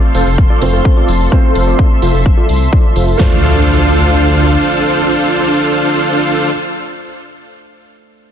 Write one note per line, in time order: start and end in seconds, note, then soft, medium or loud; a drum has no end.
0.00 0.58 A3 medium
0.00 0.59 C4 medium
0.00 0.59 F4 medium
0.00 3.16 A4 medium
0.00 0.59 C5 medium
0.00 1.28 F5 medium
0.00 3.16 C6 medium
0.15 0.24 F1 medium
0.15 0.29 F4 medium
0.15 0.29 A4 medium
0.15 0.29 C5 medium
0.15 open hi-hat medium
0.26 0.45 F1 medium
0.38 kick loud
0.50 0.59 F4 medium
0.50 0.59 A4 medium
0.50 0.59 D5 loud
0.60 0.80 F1 medium
0.60 1.29 A3 medium
0.60 1.29 C4 medium
0.60 1.29 F4 medium
0.60 1.30 C5 medium
0.60 open hi-hat medium
0.73 0.87 F4 medium
0.73 0.87 A4 medium
0.73 0.87 F5 medium
0.85 kick loud
0.97 1.11 F4 medium
0.97 1.11 A4 medium
0.97 1.11 D5 medium
1.08 1.27 F1 medium
1.08 open hi-hat medium
1.31 2.69 A3 medium
1.31 2.70 C4 medium
1.31 1.64 F4 medium
1.31 2.70 F4 medium
1.31 1.64 A4 medium
1.31 1.64 C5 medium
1.31 2.70 C5 medium
1.31 3.18 E5 medium
1.31 kick loud
1.55 1.74 F1 loud
1.55 open hi-hat medium
1.67 1.89 F4 medium
1.67 1.89 A4 medium
1.67 1.89 D5 medium
1.79 kick loud
2.02 2.12 F1 medium
2.02 2.16 F4 medium
2.02 2.16 A4 medium
2.02 2.16 C5 medium
2.02 open hi-hat medium
2.14 2.33 F1 medium
2.26 kick loud
2.37 2.47 F4 medium
2.37 2.47 A4 medium
2.37 2.47 D5 loud
2.49 2.68 C2 medium
2.49 open hi-hat medium
2.72 2.93 F4 medium
2.72 2.93 A4 medium
2.72 2.93 D5 loud
2.72 kick loud
2.96 3.15 F1 medium
2.96 3.17 F4 medium
2.96 3.17 A4 medium
2.96 3.17 C5 medium
2.96 open hi-hat medium
3.18 4.56 D2 medium
3.18 6.48 A3 medium
3.18 6.49 D4 medium
3.18 6.50 D4 medium
3.18 6.50 F4 medium
3.18 6.51 F4 medium
3.18 6.50 A4 medium
3.18 6.50 C5 medium
3.18 6.52 C5 medium
3.18 6.50 F5 medium
3.18 kick medium
3.18 snare medium
3.18 impact medium